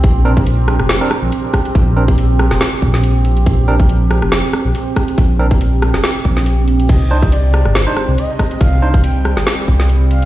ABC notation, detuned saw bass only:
X:1
M:4/4
L:1/16
Q:"Swing 16ths" 1/4=140
K:Bbmix
V:1 name="Detuned saw bass" clef=bass
B,,,6- B,,, F,,, F,,, z2 B,,, z4 | B,,,6- B,,, F,,, z2 B,,,6 | B,,,6- B,,, F,,, F,,, z2 B,,, z4 | B,,,6- B,,, F,,, z2 B,,,6 |
C,,6- C,, G,,, G,,, z2 C,, z4 | C,,6- C,, G,,, z2 C,,6 |]